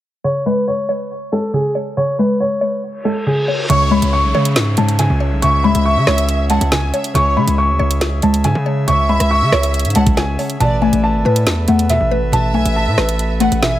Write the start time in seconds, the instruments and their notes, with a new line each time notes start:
0.24 synth pluck C#3, grand piano C#5
0.46 synth pluck G#3, grand piano B4
0.68 grand piano C#5
0.89 synth pluck C#5
1.32 synth pluck G#3, grand piano A4
1.54 synth pluck C#3, grand piano G#4
1.75 synth pluck C#5
1.97 synth pluck C#3, grand piano C#5
2.19 synth pluck G#3, grand piano B4
2.40 grand piano C#5
2.61 synth pluck C#5
2.83 reverse cymbal
3.05 synth pluck G#3, grand piano A4
3.27 synth pluck C#3, grand piano G#4
3.48 synth pluck C#5
3.70 808-style bass C#2, pipe organ C#3 C#4 G#4 E5, synth pluck C#3, violin section C#5, grand piano C#6, closed hi-hat, downlifter
3.91 synth pluck G#3, grand piano B5
4.02 808-style bass C#2, closed hi-hat
4.13 grand piano C#6
4.24 808-style bass B1
4.34 808-style bass C#3, synth pluck C#5
4.45 closed hi-hat
4.56 808-style bass G#2, snare, closed hi-hat
4.77 808-style bass G#2, synth pluck G#3, grand piano A5, closed hi-hat
4.89 closed hi-hat
4.99 synth pluck C#3, grand piano G#5, closed hi-hat
5.10 808-style bass C#2
5.20 synth pluck C#5
5.32 808-style bass B1
5.42 808-style bass C#2, synth pluck C#3, violin section E5, grand piano C#6, closed hi-hat
5.64 808-style bass D2, synth pluck G#3, grand piano B5
5.75 808-style bass C#2, closed hi-hat
5.85 grand piano C#6
5.96 808-style bass C#3
6.07 808-style bass C#2, synth pluck C#5, cross-stick, snare
6.18 closed hi-hat
6.29 closed hi-hat
6.50 synth pluck G#3, violin section F#5, grand piano A5, closed hi-hat
6.61 808-style bass C#2, closed hi-hat
6.72 synth pluck C#3, grand piano G#5, violin section G#5, snare
6.93 synth pluck C#5, violin section E5, closed hi-hat
7.04 closed hi-hat
7.14 808-style bass C#2, synth pluck C#3, violin section C#5, grand piano C#6, closed hi-hat
7.37 808-style bass C#3, synth pluck G#3, grand piano B5
7.47 808-style bass C#2, closed hi-hat
7.58 grand piano C#6
7.69 808-style bass D2
7.79 808-style bass C#2, synth pluck C#5
7.91 closed hi-hat
8.01 snare, closed hi-hat
8.22 808-style bass C#2, synth pluck G#3, grand piano A5, closed hi-hat
8.34 closed hi-hat
8.44 808-style bass G#2, synth pluck C#3, grand piano G#5, closed hi-hat
8.55 808-style bass C#3
8.66 synth pluck C#5
8.88 808-style bass C#2, synth pluck C#3, violin section E5, grand piano C#6, closed hi-hat
9.09 synth pluck G#3, grand piano B5
9.20 808-style bass C#2, cross-stick, closed hi-hat
9.31 grand piano C#6
9.42 808-style bass C#3
9.52 808-style bass C#2, synth pluck C#5, cross-stick, snare
9.63 closed hi-hat
9.74 closed hi-hat
9.79 closed hi-hat
9.85 808-style bass G#2, closed hi-hat
9.90 closed hi-hat
9.95 808-style bass C#2, synth pluck G#3, violin section F#5, grand piano A5, closed hi-hat
10.06 kick, closed hi-hat
10.17 synth pluck C#3, grand piano G#5, snare
10.39 synth pluck C#5, open hi-hat
10.50 closed hi-hat
10.60 808-style bass A1, synth pluck B2, pipe organ A3 A4 B4, violin section D5, grand piano A5, closed hi-hat
10.82 synth pluck A3, grand piano G#5
10.93 808-style bass A1, closed hi-hat
11.04 grand piano A5
11.14 808-style bass G#1
11.25 808-style bass A2, synth pluck B4
11.36 closed hi-hat
11.47 808-style bass E2, snare, closed hi-hat
11.68 808-style bass E2, synth pluck A3, grand piano F#5, closed hi-hat
11.79 closed hi-hat
11.89 synth pluck B2, grand piano E5, closed hi-hat
12.01 808-style bass A1
12.11 synth pluck B4
12.22 808-style bass G#1
12.32 808-style bass A1, synth pluck B2, violin section E5, grand piano A5, closed hi-hat
12.54 808-style bass B1, synth pluck A3, grand piano G#5
12.65 808-style bass A1, closed hi-hat
12.76 grand piano A5
12.87 808-style bass A2
12.98 808-style bass A1, synth pluck B4, cross-stick, snare
13.09 closed hi-hat
13.19 closed hi-hat
13.40 synth pluck A3, grand piano F#5, violin section F#5, closed hi-hat
13.52 808-style bass A1, closed hi-hat
13.62 synth pluck B2, grand piano E5, violin section G#5, snare